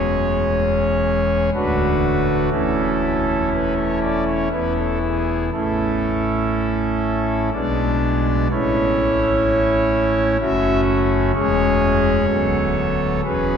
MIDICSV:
0, 0, Header, 1, 2, 480
1, 0, Start_track
1, 0, Key_signature, 3, "major"
1, 0, Tempo, 966184
1, 1256, Time_signature, 3, 2, 24, 8
1, 1256, Tempo, 1001669
1, 3656, Tempo, 952381
1, 6698, End_track
2, 0, Start_track
2, 0, Title_t, "Pipe organ"
2, 0, Program_c, 0, 19
2, 0, Note_on_c, 0, 28, 63
2, 0, Note_on_c, 0, 40, 68
2, 0, Note_on_c, 0, 56, 54
2, 0, Note_on_c, 0, 61, 52
2, 0, Note_on_c, 0, 68, 57
2, 0, Note_on_c, 0, 73, 93
2, 744, Note_off_c, 0, 28, 0
2, 744, Note_off_c, 0, 61, 0
2, 745, Note_off_c, 0, 40, 0
2, 745, Note_off_c, 0, 56, 0
2, 745, Note_off_c, 0, 68, 0
2, 745, Note_off_c, 0, 73, 0
2, 764, Note_on_c, 0, 62, 52
2, 765, Note_on_c, 0, 38, 66
2, 765, Note_on_c, 0, 57, 55
2, 765, Note_on_c, 0, 71, 102
2, 766, Note_on_c, 0, 26, 64
2, 766, Note_on_c, 0, 66, 53
2, 1240, Note_off_c, 0, 57, 0
2, 1240, Note_off_c, 0, 62, 0
2, 1241, Note_off_c, 0, 26, 0
2, 1241, Note_off_c, 0, 38, 0
2, 1241, Note_off_c, 0, 66, 0
2, 1241, Note_off_c, 0, 71, 0
2, 1253, Note_on_c, 0, 57, 48
2, 1253, Note_on_c, 0, 61, 51
2, 1253, Note_on_c, 0, 69, 92
2, 1254, Note_on_c, 0, 28, 57
2, 1254, Note_on_c, 0, 64, 47
2, 1255, Note_on_c, 0, 40, 63
2, 1719, Note_off_c, 0, 69, 0
2, 1735, Note_on_c, 0, 71, 83
2, 1836, Note_off_c, 0, 71, 0
2, 1855, Note_on_c, 0, 73, 83
2, 1956, Note_off_c, 0, 73, 0
2, 1973, Note_on_c, 0, 74, 88
2, 2075, Note_off_c, 0, 74, 0
2, 2090, Note_on_c, 0, 73, 92
2, 2192, Note_off_c, 0, 57, 0
2, 2192, Note_off_c, 0, 61, 0
2, 2193, Note_off_c, 0, 28, 0
2, 2193, Note_off_c, 0, 64, 0
2, 2193, Note_off_c, 0, 73, 0
2, 2194, Note_off_c, 0, 40, 0
2, 2208, Note_on_c, 0, 71, 86
2, 2209, Note_on_c, 0, 28, 55
2, 2209, Note_on_c, 0, 40, 54
2, 2210, Note_on_c, 0, 64, 48
2, 2211, Note_on_c, 0, 59, 45
2, 2312, Note_off_c, 0, 71, 0
2, 2329, Note_on_c, 0, 69, 84
2, 2434, Note_off_c, 0, 69, 0
2, 2451, Note_on_c, 0, 68, 73
2, 2657, Note_off_c, 0, 68, 0
2, 2678, Note_off_c, 0, 28, 0
2, 2678, Note_off_c, 0, 40, 0
2, 2679, Note_off_c, 0, 59, 0
2, 2679, Note_off_c, 0, 64, 0
2, 2694, Note_on_c, 0, 57, 47
2, 2695, Note_on_c, 0, 64, 46
2, 2695, Note_on_c, 0, 69, 74
2, 2696, Note_on_c, 0, 45, 56
2, 2697, Note_on_c, 0, 33, 55
2, 2698, Note_on_c, 0, 61, 47
2, 3637, Note_off_c, 0, 57, 0
2, 3637, Note_off_c, 0, 64, 0
2, 3638, Note_off_c, 0, 33, 0
2, 3638, Note_off_c, 0, 45, 0
2, 3638, Note_off_c, 0, 69, 0
2, 3639, Note_off_c, 0, 61, 0
2, 3656, Note_on_c, 0, 35, 58
2, 3657, Note_on_c, 0, 62, 46
2, 3657, Note_on_c, 0, 74, 92
2, 3658, Note_on_c, 0, 56, 48
2, 3658, Note_on_c, 0, 59, 48
2, 3659, Note_on_c, 0, 47, 57
2, 4130, Note_off_c, 0, 35, 0
2, 4130, Note_off_c, 0, 74, 0
2, 4131, Note_off_c, 0, 47, 0
2, 4131, Note_off_c, 0, 56, 0
2, 4131, Note_off_c, 0, 59, 0
2, 4131, Note_off_c, 0, 62, 0
2, 4145, Note_on_c, 0, 33, 62
2, 4146, Note_on_c, 0, 57, 49
2, 4146, Note_on_c, 0, 61, 51
2, 4147, Note_on_c, 0, 45, 59
2, 4148, Note_on_c, 0, 64, 50
2, 4148, Note_on_c, 0, 73, 96
2, 5084, Note_off_c, 0, 33, 0
2, 5084, Note_off_c, 0, 57, 0
2, 5084, Note_off_c, 0, 61, 0
2, 5085, Note_off_c, 0, 45, 0
2, 5085, Note_off_c, 0, 64, 0
2, 5085, Note_off_c, 0, 73, 0
2, 5101, Note_on_c, 0, 30, 68
2, 5102, Note_on_c, 0, 61, 58
2, 5102, Note_on_c, 0, 66, 61
2, 5103, Note_on_c, 0, 57, 55
2, 5104, Note_on_c, 0, 42, 68
2, 5104, Note_on_c, 0, 76, 105
2, 5305, Note_off_c, 0, 76, 0
2, 5561, Note_off_c, 0, 30, 0
2, 5561, Note_off_c, 0, 66, 0
2, 5562, Note_off_c, 0, 57, 0
2, 5562, Note_off_c, 0, 61, 0
2, 5563, Note_off_c, 0, 42, 0
2, 5572, Note_on_c, 0, 68, 61
2, 5573, Note_on_c, 0, 28, 74
2, 5573, Note_on_c, 0, 40, 75
2, 5573, Note_on_c, 0, 56, 60
2, 5573, Note_on_c, 0, 61, 63
2, 5574, Note_on_c, 0, 73, 123
2, 6035, Note_off_c, 0, 28, 0
2, 6035, Note_off_c, 0, 40, 0
2, 6035, Note_off_c, 0, 68, 0
2, 6036, Note_off_c, 0, 56, 0
2, 6036, Note_off_c, 0, 61, 0
2, 6048, Note_on_c, 0, 26, 72
2, 6048, Note_on_c, 0, 54, 60
2, 6049, Note_on_c, 0, 38, 71
2, 6050, Note_on_c, 0, 59, 64
2, 6050, Note_on_c, 0, 69, 59
2, 6513, Note_off_c, 0, 73, 0
2, 6518, Note_off_c, 0, 26, 0
2, 6518, Note_off_c, 0, 54, 0
2, 6519, Note_off_c, 0, 38, 0
2, 6519, Note_off_c, 0, 59, 0
2, 6519, Note_off_c, 0, 69, 0
2, 6531, Note_on_c, 0, 61, 55
2, 6533, Note_on_c, 0, 28, 66
2, 6533, Note_on_c, 0, 40, 69
2, 6533, Note_on_c, 0, 54, 54
2, 6533, Note_on_c, 0, 68, 54
2, 6533, Note_on_c, 0, 71, 101
2, 6698, Note_off_c, 0, 28, 0
2, 6698, Note_off_c, 0, 40, 0
2, 6698, Note_off_c, 0, 54, 0
2, 6698, Note_off_c, 0, 61, 0
2, 6698, Note_off_c, 0, 68, 0
2, 6698, Note_off_c, 0, 71, 0
2, 6698, End_track
0, 0, End_of_file